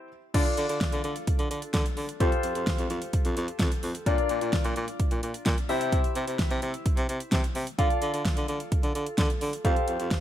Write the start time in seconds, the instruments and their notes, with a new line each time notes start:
0.34 baritone saxophone D3, grand piano D4 F4 A4 D5, kick, closed hi-hat, crash
0.46 closed hi-hat
0.57 baritone saxophone D3, closed hi-hat
0.69 baritone saxophone D3, closed hi-hat
0.81 kick, snare, closed hi-hat
0.92 baritone saxophone D3, closed hi-hat
1.04 baritone saxophone D3, closed hi-hat
1.16 closed hi-hat
1.27 kick, closed hi-hat
1.39 baritone saxophone D3, closed hi-hat
1.50 baritone saxophone D3, closed hi-hat
1.62 closed hi-hat
1.74 baritone saxophone D3, kick, snare, closed hi-hat
1.86 closed hi-hat
1.97 baritone saxophone D3, open hi-hat
2.09 closed hi-hat
2.20 baritone saxophone F2, grand piano F4 G4 A4 C5, kick, closed hi-hat
2.32 closed hi-hat
2.43 baritone saxophone F2, closed hi-hat
2.55 baritone saxophone F2, closed hi-hat
2.67 kick, snare, closed hi-hat
2.78 baritone saxophone F2, closed hi-hat
2.90 baritone saxophone F2, closed hi-hat
3.02 closed hi-hat
3.13 kick, closed hi-hat
3.25 baritone saxophone F2, closed hi-hat
3.37 baritone saxophone F2, closed hi-hat
3.48 closed hi-hat
3.59 baritone saxophone F2, kick, snare, closed hi-hat
3.72 closed hi-hat
3.83 baritone saxophone F2, open hi-hat
3.95 closed hi-hat
4.06 baritone saxophone A#2, grand piano D4 F4 A#4 D5, kick, closed hi-hat
4.18 closed hi-hat
4.29 baritone saxophone A#2, closed hi-hat
4.41 baritone saxophone A#2, closed hi-hat
4.53 kick, snare, closed hi-hat
4.64 baritone saxophone A#2, closed hi-hat
4.76 baritone saxophone A#2, closed hi-hat
4.88 closed hi-hat
5.00 kick, closed hi-hat
5.11 baritone saxophone A#2, closed hi-hat
5.23 baritone saxophone A#2, closed hi-hat
5.34 closed hi-hat
5.46 baritone saxophone A#2, kick, snare, closed hi-hat
5.58 closed hi-hat
5.69 baritone saxophone C3, grand piano E4 G4 C5 E5, open hi-hat
5.81 closed hi-hat
5.92 kick, closed hi-hat
6.04 closed hi-hat
6.15 baritone saxophone C3, closed hi-hat
6.27 baritone saxophone C3, closed hi-hat
6.39 kick, snare, closed hi-hat
6.50 baritone saxophone C3, closed hi-hat
6.62 baritone saxophone C3, closed hi-hat
6.74 closed hi-hat
6.86 kick, closed hi-hat
6.97 baritone saxophone C3, closed hi-hat
7.09 baritone saxophone C3, closed hi-hat
7.20 closed hi-hat
7.32 baritone saxophone C3, kick, snare, closed hi-hat
7.44 closed hi-hat
7.55 baritone saxophone C3, open hi-hat
7.67 closed hi-hat
7.78 baritone saxophone D3, grand piano F4 A4 D5 F5, kick, closed hi-hat
7.90 closed hi-hat
8.02 baritone saxophone D3, closed hi-hat
8.14 baritone saxophone D3, closed hi-hat
8.25 kick, snare, closed hi-hat
8.37 baritone saxophone D3, closed hi-hat
8.48 baritone saxophone D3, closed hi-hat
8.60 closed hi-hat
8.72 kick, closed hi-hat
8.83 baritone saxophone D3, closed hi-hat
8.95 baritone saxophone D3, closed hi-hat
9.06 closed hi-hat
9.18 baritone saxophone D3, kick, snare, closed hi-hat
9.30 closed hi-hat
9.41 baritone saxophone D3, open hi-hat
9.53 closed hi-hat
9.65 baritone saxophone F2, grand piano G4 A4 C5 F5, kick, closed hi-hat
9.76 closed hi-hat
9.88 baritone saxophone F2, closed hi-hat
9.99 baritone saxophone F2, closed hi-hat
10.11 kick, snare, closed hi-hat